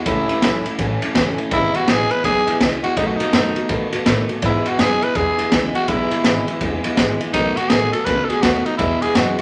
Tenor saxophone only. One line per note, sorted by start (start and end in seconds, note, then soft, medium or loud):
0.06 0.75 E4 medium
1.53 1.77 E4 loud
1.76 1.91 F#4 loud
1.89 2.12 G#4 loud
2.11 2.24 B4 loud
2.25 2.58 G#4 loud
2.84 2.98 F#4 loud
2.97 3.08 D#4 medium
3.06 3.17 F#4 medium
3.16 3.70 D#4 medium
4.45 4.69 E4 medium
4.67 4.81 F#4 medium
4.80 5.05 G#4 loud
5.03 5.18 B4 medium
5.16 5.52 G#4 medium
5.75 5.90 F#4 loud
5.88 6.61 E4 medium
7.33 7.58 D#4 loud
7.56 7.70 F#4 loud
7.69 7.92 G#4 loud
7.92 8.06 A4 loud
8.05 8.26 B4 loud
8.24 8.30 A4 medium
8.29 8.44 G#4 loud
8.42 8.67 F#4 medium
8.65 8.77 D#4 loud
8.77 9.03 E4 medium
9.02 9.17 G#4 medium
9.15 9.38 F#4 medium
9.38 9.42 F#4 medium